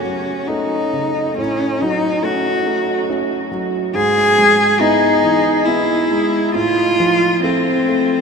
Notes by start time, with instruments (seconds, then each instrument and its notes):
Already playing: grand piano F#2 C#3 A3 C#4, cello C#4
0.05 grand piano F#3
0.48 grand piano A3 C#4, cello D#4
0.93 grand piano C#3
1.37 grand piano A2, cello C#4
1.81 grand piano F#3, cello D#4
2.23 grand piano A3 C#4, cello F#4
2.66 grand piano A3
3.09 grand piano A3 C#4
3.51 grand piano F#3
3.95 grand piano G#2, cello G#4
4.38 grand piano G#3
4.80 grand piano B3 E4, cello D#4
5.22 grand piano E3
5.65 grand piano B3 E4, cello E4
6.11 grand piano G#3
6.54 grand piano A2, cello F4
7.00 grand piano F3
7.43 grand piano A3 C4, cello C4
7.88 grand piano A3